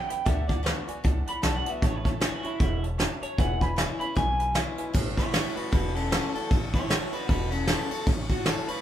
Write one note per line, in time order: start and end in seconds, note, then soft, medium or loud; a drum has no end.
0.00 0.24 C#3 medium
0.09 0.19 B4 medium
0.09 0.20 E5 medium
0.09 0.25 G5 loud
0.09 0.20 B5 medium
0.09 muted upright bass stroke medium
0.09 closed hi-hat medium
0.25 0.70 D2 medium
0.25 0.62 D3 medium
0.25 0.40 D5 loud
0.25 0.47 E5 loud
0.25 0.40 F#5 loud
0.25 0.40 A5 loud
0.25 kick loud
0.25 closed hi-hat medium
0.47 0.86 D5 loud
0.47 0.58 D5 loud
0.47 0.58 F#5 medium
0.47 0.59 A5 loud
0.47 kick medium
0.47 closed hi-hat medium
0.63 0.86 D3 medium
0.63 0.86 A3 medium
0.63 0.87 B3 medium
0.63 0.86 F#4 medium
0.63 0.78 D5 medium
0.63 0.79 F#5 medium
0.63 0.79 B5 medium
0.63 snare loud
0.63 closed hi-hat medium
0.88 1.04 B3 soft
0.88 1.03 F#4 medium
0.88 0.98 D5 medium
0.88 0.98 F#5 medium
0.88 0.98 G#5 medium
0.88 muted upright bass stroke medium
0.88 closed hi-hat medium
1.04 1.24 C#2 medium
1.04 1.79 A2 medium
1.04 1.18 D5 medium
1.04 1.18 F#5 medium
1.04 1.18 A5 loud
1.04 kick loud
1.04 closed hi-hat medium
1.26 1.36 D5 medium
1.26 1.36 F#5 medium
1.26 1.37 A5 medium
1.26 1.42 B5 medium
1.26 muted upright bass stroke medium
1.26 closed hi-hat medium
1.42 1.63 B1 medium
1.42 1.65 D3 medium
1.42 1.65 A3 medium
1.42 1.65 B3 medium
1.42 1.65 F#4 loud
1.42 1.56 D5 medium
1.42 1.56 F#5 medium
1.42 1.55 A5 loud
1.42 1.57 B5 medium
1.42 snare loud
1.42 closed hi-hat medium
1.56 1.70 F#5 medium
1.66 1.83 B3 medium
1.66 1.82 F#4 medium
1.66 1.76 D5 medium
1.66 1.76 F#5 medium
1.66 1.76 A5 medium
1.66 muted upright bass stroke medium
1.66 closed hi-hat medium
1.70 1.83 E5 loud
1.82 2.25 A1 medium
1.82 2.58 A2 medium
1.82 1.96 C#5 loud
1.82 1.95 C#5 loud
1.82 1.96 E5 medium
1.82 1.96 A5 loud
1.82 kick loud
1.82 closed hi-hat medium
1.95 2.07 B4 medium
2.04 2.21 A4 loud
2.04 2.14 C#5 loud
2.04 2.15 E5 medium
2.04 2.15 A5 loud
2.04 kick medium
2.04 closed hi-hat medium
2.21 2.43 E3 medium
2.21 2.43 A3 loud
2.21 2.44 C#4 medium
2.21 2.34 F#4 loud
2.21 2.42 F#4 loud
2.21 2.35 C#5 medium
2.21 2.35 E5 medium
2.21 2.35 G#5 medium
2.21 snare loud
2.21 closed hi-hat medium
2.34 2.44 E4 loud
2.43 2.60 C#4 medium
2.43 2.84 E4 loud
2.43 2.59 F#4 medium
2.43 2.54 C#5 medium
2.43 2.54 E5 medium
2.43 2.54 A5 medium
2.43 muted upright bass stroke medium
2.43 closed hi-hat medium
2.60 3.04 E1 medium
2.60 2.98 G#2 medium
2.60 2.74 C#5 medium
2.60 2.74 E5 medium
2.60 2.74 F#5 medium
2.60 kick loud
2.60 closed hi-hat medium
2.83 2.93 C#5 medium
2.83 2.93 E5 medium
2.83 2.93 A5 medium
2.83 closed hi-hat medium
2.98 3.37 F#2 medium
2.98 3.12 C#5 loud
2.98 3.12 E5 medium
2.98 3.13 A5 loud
2.98 snare loud
2.98 closed hi-hat medium
3.21 3.31 C#5 medium
3.21 3.38 C#5 loud
3.21 3.32 E5 medium
3.21 3.32 A5 medium
3.21 muted upright bass stroke medium
3.21 closed hi-hat medium
3.38 3.82 E1 medium
3.38 4.13 E2 medium
3.38 3.52 B4 loud
3.38 3.52 E5 loud
3.38 3.61 F#5 loud
3.38 3.53 G#5 loud
3.38 kick loud
3.38 closed hi-hat medium
3.61 3.71 B4 loud
3.61 3.71 E5 medium
3.61 3.71 G#5 loud
3.61 3.77 B5 loud
3.61 kick medium
3.61 closed hi-hat medium
3.76 3.99 E3 medium
3.76 3.99 G#3 medium
3.76 3.99 C#4 loud
3.76 3.98 E4 medium
3.76 3.91 B4 medium
3.76 3.91 E5 medium
3.76 3.91 G#5 medium
3.76 snare loud
3.76 closed hi-hat medium
3.99 4.16 C#4 soft
3.99 4.15 E4 medium
3.99 4.10 B4 medium
3.99 4.10 E5 medium
3.99 4.10 G#5 medium
3.99 4.16 B5 medium
3.99 muted upright bass stroke medium
3.99 closed hi-hat medium
4.16 4.60 B1 medium
4.16 4.91 B2 medium
4.16 4.30 B4 medium
4.16 4.30 E5 medium
4.16 4.54 G#5 medium
4.16 4.31 G#5 medium
4.16 kick loud
4.16 closed hi-hat medium
4.39 4.49 B4 medium
4.39 4.49 E5 medium
4.39 4.49 B5 medium
4.39 closed hi-hat medium
4.54 4.92 E3 medium
4.54 4.92 G#3 medium
4.54 4.93 C#4 medium
4.54 4.93 E4 loud
4.54 4.69 B4 medium
4.54 4.69 E5 medium
4.54 4.69 G#5 medium
4.54 snare loud
4.54 closed hi-hat loud
4.78 4.88 B4 medium
4.78 4.88 E5 medium
4.78 4.88 G#5 medium
4.78 muted upright bass stroke medium
4.78 closed hi-hat medium
4.93 5.37 A1 medium
4.93 5.69 A2 medium
4.93 kick loud
4.93 crash loud
5.17 5.32 E4 medium
5.17 5.32 C#5 loud
5.17 kick medium
5.17 snare soft
5.17 ride medium
5.32 5.55 E3 medium
5.32 5.55 A3 medium
5.32 5.56 C#4 medium
5.32 5.55 E4 medium
5.32 5.54 F#4 medium
5.32 5.56 C#5 medium
5.32 snare loud
5.32 ride medium
5.55 5.72 C#4 soft
5.55 5.71 F#4 medium
5.55 5.70 F#4 medium
5.55 5.71 B4 medium
5.55 muted upright bass stroke medium
5.55 ride medium
5.72 6.16 E1 medium
5.72 6.47 E2 medium
5.72 5.93 F#4 medium
5.72 5.95 B4 medium
5.72 kick loud
5.72 ride medium
5.95 6.09 C#4 medium
5.95 6.10 A4 medium
5.95 ride medium
6.11 6.48 E3 medium
6.11 6.49 A3 medium
6.11 6.32 C#4 medium
6.11 6.50 C#4 medium
6.11 6.49 F#4 loud
6.11 6.34 A4 medium
6.11 snare loud
6.11 ride medium
6.34 6.50 A4 medium
6.34 muted upright bass stroke medium
6.34 ride medium
6.51 6.94 A1 medium
6.51 7.26 A2 medium
6.51 kick loud
6.51 ride medium
6.74 6.88 E4 medium
6.74 6.89 C#5 loud
6.74 kick medium
6.74 ride medium
6.89 7.11 E3 medium
6.89 7.12 A3 medium
6.89 7.12 C#4 medium
6.89 7.11 E4 medium
6.89 7.11 F#4 medium
6.89 7.12 C#5 medium
6.89 snare loud
6.89 ride medium
7.12 7.29 C#4 medium
7.12 7.26 F#4 medium
7.12 7.28 F#4 medium
7.12 7.27 B4 medium
7.12 muted upright bass stroke medium
7.12 ride medium
7.27 7.72 E1 medium
7.27 8.04 E2 medium
7.27 7.49 F#4 medium
7.27 7.51 B4 medium
7.27 kick loud
7.27 ride medium
7.51 7.66 C#4 medium
7.51 7.67 A4 medium
7.51 ride medium
7.67 7.89 E3 medium
7.67 7.90 A3 medium
7.67 7.89 C#4 medium
7.67 7.90 C#4 medium
7.67 7.89 F#4 medium
7.67 7.89 A4 loud
7.67 snare loud
7.67 ride loud
7.90 8.07 C#4 medium
7.90 8.06 F#4 medium
7.90 8.06 A4 medium
7.90 muted upright bass stroke medium
7.90 ride medium
8.07 8.50 A1 medium
8.07 8.81 A2 medium
8.07 kick loud
8.07 ride medium
8.29 8.46 F#4 loud
8.29 kick medium
8.29 ride medium
8.44 8.67 E3 medium
8.44 8.67 A3 medium
8.44 8.68 C#4 medium
8.44 8.66 F#4 loud
8.44 8.68 A4 medium
8.44 snare loud
8.44 ride medium
8.67 8.81 C#4 medium
8.67 8.81 F#4 medium
8.67 8.81 B4 medium
8.67 muted upright bass stroke medium
8.67 ride medium